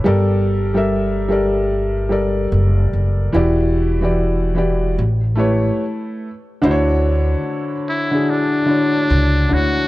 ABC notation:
X:1
M:4/4
L:1/16
Q:"Swing 16ths" 1/4=73
K:Amix
V:1 name="Felt piano"
[G,GA_Bd]2 z [G,GABe]2 z [G,GABd]3 z [G,GABd]4 z2 | [E,EFGd]2 z [E,EFGd]2 z [E,EFGd]2 z2 [A,EGBc]4 z2 | [K:Dlyd] [D,DEF=c^c]4- [D,DEF=c^c] z2 [D,DEFG]2 z [D,DEFc]3 z [D,DEFc] z |]
V:2 name="Muted trumpet"
z16 | z16 | [K:Dlyd] z6 E2 D6 F2 |]
V:3 name="Upright bass" clef=bass
G,,,12 F,,,2 F,,,2 | E,,,8 A,,,4 z4 | [K:Dlyd] D,,4 z8 C,,2 D,,2 |]